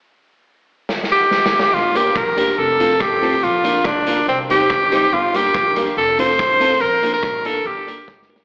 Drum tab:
HH |------------------------|---x-----x-----x-----o--|p--x-----x-----x-----x--|---x-----x-----x-----x--|
SD |------------o-o---o-o-o-|------r-----------r-----|------r-----------r--r--|------r-----------r-----|
BD |------------------------|------o-----------o-----|------o-----------o-----|------o-----------o-----|

HH |---x-----x-----x--------|
SD |------r--------r--o-o-o-|
BD |------o-----------o-----|